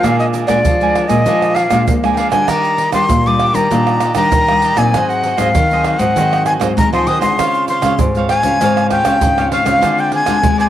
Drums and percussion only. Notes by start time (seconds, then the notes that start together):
0.04 pandeiro, tamborim, shaker, surdo
0.20 pandeiro, shaker
0.34 pandeiro, shaker
0.48 pandeiro, tamborim, shaker, surdo
0.65 pandeiro, shaker, surdo
0.81 pandeiro, shaker
0.95 pandeiro, tamborim
1.10 pandeiro, shaker, surdo
1.26 pandeiro, shaker, surdo
1.42 pandeiro, tamborim, shaker
1.56 pandeiro, tamborim
1.71 pandeiro, tamborim, shaker, surdo
1.87 pandeiro, shaker, surdo
2.04 pandeiro, tamborim, shaker
2.17 pandeiro
2.32 pandeiro, tamborim, shaker, surdo
2.48 pandeiro, tamborim, shaker, surdo
2.64 pandeiro, shaker
2.78 pandeiro
2.93 pandeiro, tamborim, shaker, surdo
3.09 pandeiro, shaker, surdo
3.26 pandeiro, shaker
3.40 pandeiro, tamborim
3.55 pandeiro, shaker, surdo
3.71 pandeiro, shaker, surdo
3.87 pandeiro, tamborim, shaker
4.00 pandeiro, tamborim, shaker
4.15 pandeiro, tamborim, shaker, surdo
4.32 pandeiro, shaker, surdo
4.48 pandeiro, tamborim, shaker
4.62 pandeiro
4.77 pandeiro, tamborim, shaker, surdo
4.94 pandeiro, tamborim, shaker, surdo
5.10 pandeiro, shaker
5.24 pandeiro
5.38 pandeiro, tamborim, shaker, surdo
5.55 pandeiro, shaker, surdo
5.71 pandeiro, shaker
5.84 pandeiro, tamborim
5.99 pandeiro, shaker, surdo
6.17 pandeiro, shaker, surdo
6.33 pandeiro, tamborim, shaker
6.46 pandeiro, tamborim, shaker
6.61 pandeiro, tamborim, shaker, surdo
6.78 pandeiro, shaker, surdo
6.93 pandeiro, tamborim, shaker
7.07 pandeiro
7.22 pandeiro, tamborim, shaker, surdo
7.39 pandeiro, tamborim, shaker, surdo
7.54 pandeiro, shaker
7.68 pandeiro, shaker
7.82 pandeiro, tamborim, shaker, surdo
7.99 pandeiro, shaker, surdo
8.15 pandeiro, shaker
8.29 pandeiro, tamborim
8.43 pandeiro, shaker, surdo
8.61 pandeiro, shaker, surdo
8.77 pandeiro, tamborim, shaker
8.90 pandeiro, tamborim, surdo
9.05 pandeiro, tamborim, shaker, surdo
9.21 pandeiro, shaker, surdo
9.38 pandeiro, tamborim, shaker
9.52 pandeiro
9.66 pandeiro, tamborim, shaker, surdo
9.83 pandeiro, tamborim, shaker, surdo
9.98 pandeiro, shaker
10.12 pandeiro
10.26 pandeiro, tamborim, shaker, surdo
10.43 pandeiro, shaker, surdo
10.59 pandeiro, shaker